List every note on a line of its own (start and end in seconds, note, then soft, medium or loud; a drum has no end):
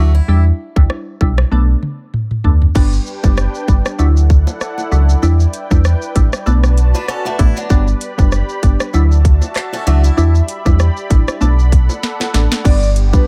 0.00 0.21 D2 medium
0.00 0.17 F#3 medium
0.00 0.14 A3 medium
0.00 0.18 D4 medium
0.00 0.18 E4 medium
0.00 0.14 F#4 medium
0.15 0.44 E4 medium
0.28 0.51 E2 loud
0.28 0.48 G3 medium
0.28 0.49 D4 medium
0.28 0.49 E4 loud
0.76 0.87 D2 medium
0.76 0.94 G3 medium
0.76 0.94 D4 medium
0.76 0.94 E4 medium
0.76 kick loud
0.90 cross-stick medium
1.21 1.44 B1 medium
1.21 1.41 G3 medium
1.21 1.41 D4 medium
1.21 1.41 E4 medium
1.21 kick medium
1.38 cross-stick loud
1.51 1.75 B1 loud
1.51 2.38 A3 medium
1.51 2.38 B3 medium
1.51 2.38 D4 loud
1.51 high tom medium
1.83 mid tom medium
2.14 mid tom medium
2.31 mid tom medium
2.44 2.68 D2 medium
2.44 2.65 A3 medium
2.44 2.65 B3 medium
2.44 2.65 D4 medium
2.44 floor tom medium
2.62 floor tom medium
2.75 2.99 G1 loud
2.75 2.96 G3 loud
2.75 2.96 B3 medium
2.75 2.96 D4 loud
2.75 3.98 D4 medium
2.75 3.98 G4 medium
2.75 3.98 B4 medium
2.75 3.98 G5 medium
2.75 kick loud
2.75 crash loud
2.75 high bongo medium
2.75 shaker medium
2.93 shaker medium
3.06 shaker medium
3.23 3.47 F#1 medium
3.23 3.41 G3 medium
3.23 3.41 B3 medium
3.23 3.41 D4 medium
3.23 kick loud
3.23 high bongo medium
3.23 shaker medium
3.37 cross-stick medium
3.37 shaker medium
3.55 shaker medium
3.68 3.81 G1 medium
3.68 3.88 G3 medium
3.68 3.89 B3 medium
3.68 3.89 D4 medium
3.68 kick medium
3.68 high bongo medium
3.68 shaker medium
3.86 cross-stick loud
3.86 shaker medium
3.99 4.46 D2 medium
3.99 4.85 F#3 medium
3.99 4.85 D4 medium
3.99 4.85 E4 loud
3.99 6.44 E4 medium
3.99 5.22 A4 medium
3.99 10.14 D5 medium
3.99 5.22 F#5 medium
3.99 high bongo medium
3.99 shaker medium
4.17 shaker medium
4.30 kick loud
4.30 shaker soft
4.47 high bongo medium
4.47 shaker medium
4.61 cross-stick medium
4.61 shaker medium
4.78 high bongo medium
4.78 shaker medium
4.91 5.15 C#2 medium
4.91 5.12 F#3 medium
4.91 5.12 D4 medium
4.91 5.12 E4 medium
4.91 low bongo medium
4.91 shaker soft
5.09 shaker medium
5.22 5.46 E2 loud
5.22 5.43 G3 loud
5.22 5.43 D4 medium
5.22 5.43 E4 loud
5.22 6.45 B4 medium
5.22 6.45 G5 medium
5.22 high bongo medium
5.22 shaker medium
5.40 shaker medium
5.53 closed hi-hat medium
5.53 shaker medium
5.71 5.95 E2 medium
5.71 5.88 G3 medium
5.71 5.88 D4 medium
5.71 5.89 E4 medium
5.71 kick loud
5.71 high bongo medium
5.71 shaker medium
5.85 cross-stick medium
5.85 shaker medium
6.02 shaker medium
6.15 6.29 A1 medium
6.15 6.36 G3 medium
6.15 6.36 D4 medium
6.15 6.36 E4 medium
6.15 kick medium
6.15 closed hi-hat medium
6.15 high bongo medium
6.15 shaker medium
6.33 cross-stick loud
6.33 shaker medium
6.46 6.93 B1 loud
6.46 7.33 A3 medium
6.46 7.33 B3 medium
6.46 7.33 D4 loud
6.46 7.69 F#4 medium
6.46 8.91 B4 medium
6.46 7.69 A5 medium
6.46 high bongo medium
6.46 shaker medium
6.64 cross-stick medium
6.64 shaker medium
6.78 closed hi-hat medium
6.78 shaker soft
6.95 7.08 D4 medium
6.95 7.08 B4 medium
6.95 high bongo medium
6.95 shaker medium
7.08 7.25 C#4 medium
7.08 7.25 A4 medium
7.08 cross-stick medium
7.08 shaker medium
7.25 7.39 A3 medium
7.25 7.39 F#4 medium
7.25 high bongo medium
7.25 shaker medium
7.39 7.52 A1 medium
7.39 7.59 A3 medium
7.39 7.60 B3 medium
7.39 7.60 D4 medium
7.39 7.56 E4 medium
7.39 kick loud
7.39 closed hi-hat medium
7.39 low bongo medium
7.39 shaker soft
7.56 7.86 F#3 medium
7.56 7.86 D4 medium
7.56 shaker medium
7.70 7.94 G1 loud
7.70 7.90 G3 medium
7.70 7.91 B3 medium
7.70 7.91 D4 loud
7.70 8.93 G4 medium
7.70 8.93 B5 medium
7.70 kick loud
7.70 high bongo medium
7.70 shaker medium
7.88 shaker medium
8.01 closed hi-hat medium
8.01 shaker medium
8.18 8.42 F#1 medium
8.18 8.36 G3 medium
8.18 8.36 B3 medium
8.18 8.36 D4 medium
8.18 kick loud
8.18 high bongo medium
8.18 shaker medium
8.32 cross-stick medium
8.32 shaker medium
8.49 shaker medium
8.63 8.76 G1 medium
8.63 8.83 G3 medium
8.63 8.83 B3 medium
8.63 8.84 D4 medium
8.63 kick medium
8.63 closed hi-hat medium
8.63 high bongo medium
8.63 shaker medium
8.80 cross-stick loud
8.80 shaker medium
8.94 9.41 D2 loud
8.94 9.80 F#3 medium
8.94 9.80 D4 medium
8.94 9.80 E4 loud
8.94 10.17 F#4 medium
8.94 11.39 E5 medium
8.94 10.17 A5 medium
8.94 high bongo medium
8.94 shaker medium
9.12 shaker medium
9.25 kick loud
9.25 closed hi-hat medium
9.25 shaker soft
9.42 high bongo medium
9.42 shaker medium
9.56 cross-stick medium
9.56 clap medium
9.56 shaker medium
9.73 9.87 C#4 medium
9.73 9.86 A4 medium
9.73 high bongo medium
9.73 shaker medium
9.87 10.10 C#2 medium
9.87 10.07 F#3 medium
9.87 10.04 A3 medium
9.87 10.07 D4 medium
9.87 10.07 E4 medium
9.87 10.03 F#4 medium
9.87 closed hi-hat medium
9.87 low bongo medium
9.87 shaker medium
10.04 10.34 E4 medium
10.04 shaker medium
10.17 10.41 E2 loud
10.17 10.38 G3 medium
10.17 10.38 D4 medium
10.17 10.38 E4 loud
10.17 11.40 G4 medium
10.17 12.63 D5 medium
10.17 11.40 B5 medium
10.17 high bongo medium
10.17 shaker medium
10.35 shaker medium
10.48 closed hi-hat medium
10.48 shaker medium
10.65 10.89 E2 medium
10.65 10.83 G3 medium
10.65 10.83 D4 medium
10.65 10.83 E4 medium
10.65 kick medium
10.65 high bongo medium
10.65 shaker medium
10.79 cross-stick medium
10.79 shaker medium
10.97 shaker medium
11.10 11.24 A1 medium
11.10 11.31 G3 medium
11.10 11.31 D4 medium
11.10 11.31 E4 medium
11.10 kick medium
11.10 closed hi-hat medium
11.10 high bongo medium
11.10 low bongo medium
11.10 shaker medium
11.28 cross-stick loud
11.28 shaker medium
11.41 11.88 B1 loud
11.41 12.27 A3 loud
11.41 12.27 B3 medium
11.41 12.28 D4 loud
11.41 12.64 A4 medium
11.41 12.64 F#5 medium
11.41 12.64 B5 medium
11.41 high bongo medium
11.41 shaker medium
11.59 shaker medium
11.72 kick loud
11.72 closed hi-hat medium
11.72 shaker soft
11.89 high bongo medium
11.89 shaker medium
12.03 snare medium
12.03 shaker medium
12.20 snare medium
12.20 high bongo medium
12.20 shaker medium
12.34 12.47 A1 loud
12.34 12.54 A3 medium
12.34 12.54 B3 medium
12.34 12.55 D4 medium
12.34 snare medium
12.34 closed hi-hat medium
12.34 low bongo medium
12.34 shaker soft
12.52 snare medium
12.52 shaker medium
12.64 13.12 G1 loud
12.64 12.85 G3 loud
12.64 12.85 B3 medium
12.64 13.27 B3 medium
12.64 12.85 D4 loud
12.64 13.27 D4 medium
12.64 13.27 G4 medium
12.64 12.90 D5 loud
12.64 kick loud
12.64 crash loud
12.64 high bongo medium
12.64 shaker medium
12.83 shaker medium
12.96 closed hi-hat medium
12.96 shaker medium
13.13 13.27 G3 medium
13.13 13.27 B3 medium
13.13 13.27 D4 medium
13.13 13.24 B4 medium
13.13 kick loud
13.13 high bongo medium
13.13 shaker medium